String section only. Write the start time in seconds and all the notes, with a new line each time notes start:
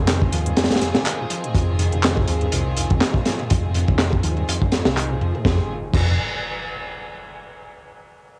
Already playing: D#3 C4 F4 G#4
5.45 D#3 C4 F4 G#4